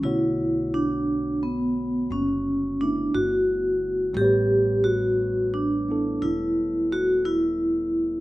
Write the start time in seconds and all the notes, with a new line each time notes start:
0.01 B1 D3 A3 B3 E4 C#5
0.06 F#4
0.74 D4
1.43 B3
2.10 F#1 C#4
2.81 A3 B3 D4 E4
3.14 G1 F#4
4.13 A1 G3 A3 G4
4.19 B3 C#5
4.24 B4
4.84 F#4
5.54 D4
5.89 B3 E4 A4
6.22 E1 E4
6.93 F#4
7.25 E4